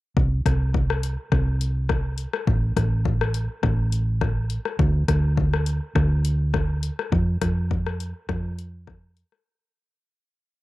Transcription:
0.17 fingered electric bass C2, kick
0.46 fingered electric bass C2, kick, cross-stick, closed hi-hat
0.74 kick
0.90 cross-stick
1.03 closed hi-hat
1.32 fingered electric bass C2, kick, cross-stick
1.61 closed hi-hat
1.89 kick, cross-stick
2.18 closed hi-hat
2.33 cross-stick
2.47 fingered electric bass A1, kick
2.76 fingered electric bass A1, kick, cross-stick, closed hi-hat
3.05 kick
3.21 cross-stick
3.34 closed hi-hat
3.63 fingered electric bass A1, kick, cross-stick
3.92 closed hi-hat
4.21 kick, cross-stick
4.50 closed hi-hat
4.65 cross-stick
4.79 fingered electric bass D2, kick
5.08 fingered electric bass D2, kick, cross-stick, closed hi-hat
5.37 kick
5.54 cross-stick
5.66 closed hi-hat
5.95 fingered electric bass D2, kick, cross-stick
6.25 closed hi-hat
6.54 kick, cross-stick
6.83 closed hi-hat
6.99 cross-stick
7.12 fingered electric bass F2, kick
7.41 fingered electric bass F2, kick, cross-stick, closed hi-hat
7.71 kick
7.87 cross-stick
8.00 closed hi-hat
8.29 fingered electric bass F2, kick, cross-stick
8.59 closed hi-hat
8.87 kick, cross-stick
9.17 closed hi-hat
9.32 cross-stick

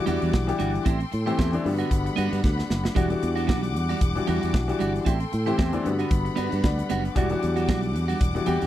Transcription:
Already playing: grand piano E3 G3 D4 F#4, string section G3 F#5 D6
0.06 fingered electric bass E2, grand piano E3 G3 D4 F#4, clean electric guitar G3 D4 F#4, closed hi-hat
0.21 fingered electric bass E2, clean electric guitar G3 D4 F#4, closed hi-hat
0.33 fingered electric bass B1, kick, snare
0.47 grand piano E3 G3 D4 G4, muted clean electric guitar stroke, closed hi-hat
0.59 fingered electric bass G1, clean electric guitar G3 D4 F#4, snare, closed hi-hat
0.74 muted clean electric guitar stroke, closed hi-hat
0.85 fingered electric bass A1, clean electric guitar C4 E4 G4, string section A4 G5 C6, kick, closed hi-hat
1.00 muted clean electric guitar stroke, closed hi-hat
1.12 fingered electric bass A2, muted clean electric guitar stroke, closed hi-hat
1.26 grand piano E3 A3 C4 G4, clean electric guitar C4 E4 G4, closed hi-hat
1.37 fingered electric bass E2, clean electric guitar C4 E4 G4, kick, snare
1.52 grand piano E3 A3 C4 D4, muted clean electric guitar stroke, closed hi-hat
1.64 fingered electric bass G2, grand piano D3 G3 B3 F4, string section G3 F#5 B5, muted clean electric guitar stroke, open hi-hat
1.72 grand piano F#4
1.78 clean electric guitar B3 D4 F#4, closed hi-hat
1.90 fingered electric bass G1, muted clean electric guitar stroke, kick, closed hi-hat
2.05 muted clean electric guitar stroke, closed hi-hat
2.16 fingered electric bass G2, clean electric guitar B3 D4 F#4, closed hi-hat
2.31 fingered electric bass G2, clean electric guitar B3 D4 F#4, closed hi-hat
2.43 fingered electric bass D2, muted clean electric guitar stroke, kick, snare
2.58 muted clean electric guitar stroke, snare
2.70 fingered electric bass F#1, snare
2.84 muted clean electric guitar stroke, snare
2.95 fingered electric bass E1, grand piano E3 G3 D4 F#4, clean electric guitar G3 D4 F#4, string section G3 F#5 D6, kick, closed hi-hat
3.10 grand piano E3 G3 D4 F#4, muted clean electric guitar stroke, closed hi-hat
3.22 fingered electric bass E2, muted clean electric guitar stroke, closed hi-hat
3.36 clean electric guitar G3 D4 F#4, closed hi-hat
3.47 fingered electric bass B1, clean electric guitar G3 D4 F#4, kick, snare
3.63 muted clean electric guitar stroke, closed hi-hat
3.74 fingered electric bass E2, muted clean electric guitar stroke, closed hi-hat
3.89 clean electric guitar G3 D4 F#4, closed hi-hat
4.01 fingered electric bass E1, muted clean electric guitar stroke, kick, closed hi-hat
4.15 grand piano E3 G3 D4 F#4, muted clean electric guitar stroke, closed hi-hat
4.27 fingered electric bass E2, grand piano E3 G3 D4 F#4, clean electric guitar G3 D4 F#4, closed hi-hat
4.41 fingered electric bass E2, clean electric guitar G3 D4 F#4, closed hi-hat
4.54 fingered electric bass B1, kick, snare
4.68 grand piano E3 G3 D4 F#4, muted clean electric guitar stroke, closed hi-hat
4.79 fingered electric bass G1, clean electric guitar G3 D4 F#4, snare, closed hi-hat
4.94 muted clean electric guitar stroke, closed hi-hat
5.05 fingered electric bass A1, clean electric guitar C4 E4 G4, string section A4 G5 C6, kick, closed hi-hat
5.20 muted clean electric guitar stroke, closed hi-hat
5.32 fingered electric bass A2, muted clean electric guitar stroke, closed hi-hat
5.46 grand piano E3 A3 C4 G4, clean electric guitar C4 E4 G4, closed hi-hat
5.58 fingered electric bass E2, clean electric guitar C4 E4 G4, kick, snare
5.73 grand piano E3 A3 C4 D4, muted clean electric guitar stroke, closed hi-hat
5.84 fingered electric bass G2, grand piano D3 G3 B3 F#4, string section G3 F#5 B5, muted clean electric guitar stroke, closed hi-hat
5.99 clean electric guitar B3 D4 F#4, closed hi-hat
6.11 fingered electric bass G1, muted clean electric guitar stroke, kick, closed hi-hat
6.25 muted clean electric guitar stroke, closed hi-hat
6.36 fingered electric bass G2, clean electric guitar B3 D4 F#4, grand piano B4, closed hi-hat
6.51 fingered electric bass G2, clean electric guitar B3 D4 F#4, closed hi-hat
6.64 fingered electric bass D2, grand piano D5, kick, snare
6.78 muted clean electric guitar stroke, closed hi-hat
6.90 fingered electric bass F#1, clean electric guitar B3 D4 F#4, grand piano F#5, closed hi-hat
7.05 muted clean electric guitar stroke, closed hi-hat
7.15 fingered electric bass E1, grand piano E3 G3 D4 F#4, clean electric guitar G3 D4 F#4, string section F#5 D6, kick, closed hi-hat
7.30 grand piano E3 F#3 D4 F#4, muted clean electric guitar stroke, closed hi-hat
7.37 grand piano G3
7.42 fingered electric bass E2, muted clean electric guitar stroke, closed hi-hat
7.56 clean electric guitar G3 D4 F#4, closed hi-hat
7.68 fingered electric bass B1, clean electric guitar G3 D4 F#4, kick, snare
7.82 muted clean electric guitar stroke, closed hi-hat
7.94 fingered electric bass E2, muted clean electric guitar stroke, closed hi-hat
8.08 clean electric guitar G3 D4 F#4, closed hi-hat
8.20 fingered electric bass E1, muted clean electric guitar stroke, kick, closed hi-hat
8.35 grand piano E3 G3 D4 F#4, muted clean electric guitar stroke, closed hi-hat
8.46 fingered electric bass E2, grand piano E3 G3 D4 G4, clean electric guitar G3 D4 F#4, closed hi-hat
8.60 fingered electric bass E2, clean electric guitar G3 D4 F#4, closed hi-hat

